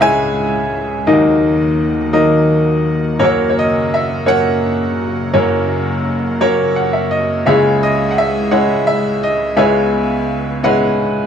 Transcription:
Already playing: C#2 C#3 G#3 E4 G#4 D#5 F#5
0.00 G#3 C#4 E4 C#5 E5 G#5
1.07 D#2 D#3 F#3 A#3 D#4 F#4 A#4 D#5
2.13 F#3 A#3 D#4 A#4 D#5
3.19 F#1 F#2 C#3 F#3 A#3 C#4 F#4 A#4 C#5
3.23 A#4 C#5
3.49 C#5
3.59 D#5
3.94 E5
4.26 F#3 A#3 C#4 A#4 C#5 F#5
5.33 F#1 F#2 F#3 A#3 C#4 F#4 A#4 C#5
6.41 F#3 A#3 C#4 A#4 C#5
6.76 F#5
6.93 E5
7.11 D#5
7.46 C#2 C#3 G#3 C#4 E4 G#4 C#5 E5
7.83 D#5
8.11 F#5
8.18 E5
8.51 G#3 C#4 E4 C#5 F#5
8.87 E5
9.23 D#5
9.56 C#2 C#3 G#3 B3 C#4 E4 G#4 B4 C#5 E5
9.61 E4
10.63 G#3 C#4 E4 B4 F#5

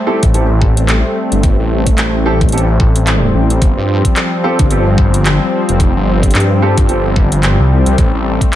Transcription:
Already playing: G3 A3 C4
0.07 C4 E4 G4 A4
0.23 A1, kick, closed hi-hat
0.34 C4 E4 G4 A4, closed hi-hat
0.62 kick
0.77 closed hi-hat
0.88 clap, closed hi-hat
1.31 G1, closed hi-hat
1.43 kick, closed hi-hat
1.59 A1
1.87 kick, closed hi-hat
1.98 A1, clap, closed hi-hat
2.26 C4 E4 G4 A4
2.41 kick, closed hi-hat
2.49 A1, closed hi-hat
2.52 C4 E4 G4 A4, closed hi-hat
2.58 closed hi-hat
2.80 A1, kick
2.96 closed hi-hat
3.07 clap, closed hi-hat
3.34 A1
3.50 closed hi-hat
3.61 G1 F3, kick, closed hi-hat
3.77 G2
4.05 kick, closed hi-hat
4.16 clap, closed hi-hat
4.44 C4 F4 G4 A4
4.59 G1, kick, closed hi-hat
4.71 C4 F4 G4 A4, closed hi-hat
4.98 kick
5.14 closed hi-hat
5.26 clap, closed hi-hat
5.69 F1, closed hi-hat
5.80 kick, closed hi-hat
5.96 G1
6.23 kick, closed hi-hat
6.31 closed hi-hat
6.35 G2, clap, closed hi-hat
6.40 closed hi-hat
6.62 C4 F4 G4 A4
6.78 kick, closed hi-hat
6.89 G1 C4 F4 G4 A4, closed hi-hat
7.16 kick
7.32 G1, closed hi-hat
7.43 clap, closed hi-hat
7.59 C2
7.86 C2, closed hi-hat
7.98 A1 A3, kick, closed hi-hat
8.14 A1
8.41 kick, closed hi-hat

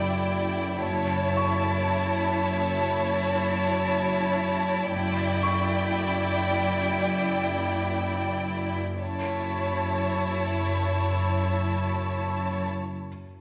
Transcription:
Already playing: F#1 F#2 E4 D5 G5 B5
0.85 F#1 F#2 E4 C#5 A5
1.37 C#6
4.93 F#1 F#2 E4 D5 G5
5.43 C#6
8.98 F#1 F#2 E4 C#5 A5 C#6
10.00 E6

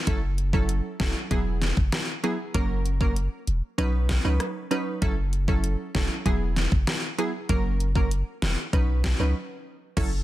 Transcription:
0.07 F#1 F#3 C#4 E4 A4, kick, closed hi-hat
0.38 closed hi-hat
0.53 F#3 C#4 E4 A4, kick
0.69 closed hi-hat
1.00 E1 F#3 C#4 E4 A4, kick, snare, closed hi-hat
1.31 E1 F#3 B3 E4 G#4, kick, closed hi-hat
1.62 snare, closed hi-hat
1.77 F#1, kick
1.92 cross-stick, snare, closed hi-hat
2.24 F#3 B3 E4 G#4, closed hi-hat
2.54 F#1 F#3 A#3 C#4 A#4, kick, closed hi-hat
2.86 closed hi-hat
3.01 F#3 A#3 C#4 A#4, kick
3.16 closed hi-hat
3.47 E1, closed hi-hat
3.78 B1 F#3 C#4 D#4 B4, closed hi-hat
4.09 kick, snare, closed hi-hat
4.24 C#2 F#3 C#4 D#4 B4
4.40 cross-stick, closed hi-hat
4.71 F#3 C#4 D#4 B4, closed hi-hat
5.02 F#1 F#3 C#4 E4 A4, kick, closed hi-hat
5.33 closed hi-hat
5.48 F#3 C#4 E4 A4, kick
5.64 closed hi-hat
5.95 E1 F#3 C#4 E4 A4, kick, snare, closed hi-hat
6.26 E1 F#3 B3 E4 G#4, kick, closed hi-hat
6.56 snare, closed hi-hat
6.72 F#1, kick
6.87 cross-stick, snare, closed hi-hat
7.18 F#3 B3 E4 G#4, closed hi-hat
7.49 F#1 F#3 A#3 C#4 A#4, kick, closed hi-hat
7.80 closed hi-hat
7.95 F#3 A#3 C#4 A#4, kick
8.11 closed hi-hat
8.42 E1, snare, closed hi-hat
8.73 B1 F#3 C#4 D#4 B4, kick, closed hi-hat
9.04 kick, snare, closed hi-hat
9.19 C#2 F#3 C#4 D#4 B4
9.97 F#1 F#3 C#4 E4 A4, kick, closed hi-hat, crash

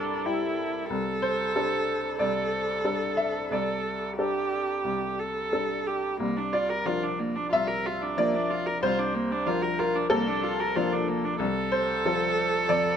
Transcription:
Already playing: C2 G2 G3 D4 E4 G4 A4 A#4 C5
0.25 G3 E4 G4
0.90 C2 A4
1.22 C5
1.55 G3 D4 A4
2.19 C2 A4 D5
2.84 G3 D4 A4
3.17 E5
3.51 C2 A4 D5
4.18 G3 D4 G4 A4
4.84 C2
5.19 A4
5.52 G3 D4 A4
5.87 G4
6.20 C2 A#3
6.37 D4
6.53 F4 D5
6.70 A#4
6.86 F3 D4 F4 A#4
7.04 D4
7.20 A#3
7.36 D4
7.52 C2 F4 E5
7.68 A#4
7.86 F4
8.02 D4
8.17 F3 A#3 D4 A#4 D5
8.35 D4
8.51 F4
8.67 A#4
8.83 C2 F4 C5
8.99 D4
9.15 A#3
9.32 D4
9.46 F3 D4 F4 A#4
9.63 A#4
9.79 F4 A#4
9.96 D4
10.10 C2 A#3 A4
10.28 D4
10.44 F4
10.60 A#4
10.76 F3 A#3 D4 F4
10.93 D4
11.09 A#3
11.25 D4
11.39 C2 A4
11.72 C5
12.05 F3 F4 A4
12.69 F2 D5

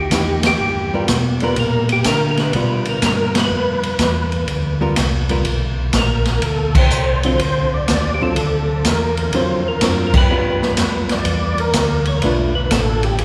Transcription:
0.00 G4
0.11 E2 A#3 D#4 E4, kick, snare, hi-hat pedal, ride
0.43 G4, snare, ride
0.60 G2
0.94 G3 B3 F4 A#4
1.08 B2, kick, snare, hi-hat pedal, ride
1.40 G3 B3 F4 A#4 B4, ride
1.56 A#2 A#4, kick, ride
1.89 G4, ride
2.04 D3 A#4, kick, snare, hi-hat pedal, ride
2.31 A#4
2.37 B4, snare, ride
2.53 B2 G3 B3 F4, kick, ride
2.85 B2 A#4, ride
3.02 G2, kick, snare, hi-hat pedal, ride
3.06 A#4
3.35 B4, snare, ride
3.51 F2
3.83 ride
3.99 E2, kick, snare, hi-hat pedal, ride
4.32 ride
4.48 D2, kick, ride
4.81 G3 B3 F4 A#4
4.96 C2, kick, snare, hi-hat pedal, ride
5.29 G3 B3 F4 A#4, ride
5.45 B1, kick, ride
5.93 A#1, kick, snare, hi-hat pedal, ride
5.98 A#4
6.25 snare, ride
6.42 D2 A4, kick, ride
6.75 C5, kick, crash
6.90 C2, hi-hat pedal
7.23 D3 F#3 C4 F4 C5, ride
7.39 D2, kick, ride
7.73 D2 D5
7.87 D#2, kick, snare, hi-hat pedal, ride
8.14 G4
8.21 D3 F#3 C4 F4 A4
8.36 D2, kick, ride
8.85 E2 A#4, kick, snare, hi-hat pedal, ride
9.17 ride
9.33 F2 D3 F#3 C4 F4 C5, kick, ride
9.68 A#4
9.81 F#2 D3 F#3 C4 F4, kick, snare, hi-hat pedal, ride
10.07 A#4
10.14 B4, kick, crash
10.30 G2 G3 B3 F4
10.62 snare
10.77 F2, kick, snare, hi-hat pedal, ride
11.09 D5, snare, ride
11.25 E2, kick, ride
11.58 A#4, ride
11.73 D2, kick, snare, hi-hat pedal, ride
12.05 C#5, ride
12.18 A#4 B4, ride
12.22 B1 A3 D4 F4, kick
12.55 B4
12.71 A1 A4, kick, snare, hi-hat pedal, ride
13.03 G4, ride
13.18 G#1 G#4, kick, ride

